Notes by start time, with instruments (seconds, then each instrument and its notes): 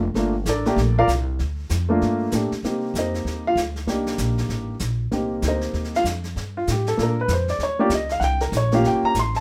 Already playing: upright bass F1
0.14 upright bass G1, upright piano A3 A#3 D4 F4, brush sweep, snare
0.45 upright bass A1, upright piano D4 A4 A#4 D5, snare, hi-hat pedal
0.65 upright piano A3 A#3 D4 G4, snare
0.77 upright bass A#1, brush sweep, snare
0.99 upright piano F4 A#4 D5 F5
1.08 upright bass C2, snare, hi-hat pedal
1.39 upright bass D2, brush sweep, snare
1.69 upright bass F2, snare, hi-hat pedal
1.89 upright piano A3 A#3 D4 F4
2.01 upright bass G2, brush sweep, snare
2.31 upright bass A2, upright piano A3 A#3 D4 G4, snare, hi-hat pedal
2.52 muted upright bass stroke, snare
2.63 upright bass C3, upright piano A#3 C4 D#4 G4, brush sweep, snare
2.94 upright bass F2, snare, hi-hat pedal
2.98 upright piano D#4 A#4 C5 D#5
3.14 snare
3.25 upright bass D#2, brush sweep, snare
3.47 upright piano F4 F5
3.56 upright bass D2, snare, hi-hat pedal
3.76 snare
3.87 upright bass C2, upright piano A#3 D4 D#4 G4, brush sweep, snare
4.06 snare
4.18 upright bass A#1, snare, hi-hat pedal
4.37 snare
4.49 upright bass A1, brush sweep, snare
4.79 upright bass A#1, snare, hi-hat pedal
5.11 upright bass C2, upright piano A#3 C4 D#4 G4, brush sweep, snare
5.42 upright bass D2, snare, hi-hat pedal
5.48 upright piano D#4 A#4 C5 D#5
5.61 snare
5.74 upright bass D#2, brush sweep, snare
5.84 snare
5.94 upright piano F4 F5, snare
6.04 upright bass F2, snare, hi-hat pedal
6.24 snare
6.36 upright bass G2, brush sweep, snare
6.57 upright piano F4
6.67 upright bass A2, snare, hi-hat pedal
6.72 upright piano G4
6.86 upright piano A4, snare
6.97 upright bass A#2, upright piano A#3 D4 F4 A4, brush sweep, snare
7.03 upright piano A#4
7.21 upright piano B4
7.28 upright bass F2, snare, hi-hat pedal
7.33 upright piano C5
7.48 upright piano D5, snare
7.59 upright bass D#2, brush sweep, snare
7.63 upright piano C#5
7.79 upright piano A#3 C#4 F4 G4 D5
7.90 upright bass C#2, snare, hi-hat pedal
7.95 upright piano D#5
8.09 upright piano F5, snare
8.20 upright bass C2, upright piano F#5, brush sweep, snare
8.24 upright piano G5
8.40 upright piano A#4, snare
8.52 upright bass A#1, snare, hi-hat pedal
8.57 upright piano C#5
8.71 upright piano A#3 C#4 F4 G4 F5, snare
8.83 upright bass G1, brush sweep, snare
8.87 upright piano G5
9.03 upright piano A#5, muted upright bass stroke
9.14 upright bass A1, snare, hi-hat pedal
9.19 upright piano C6
9.34 upright piano A5, snare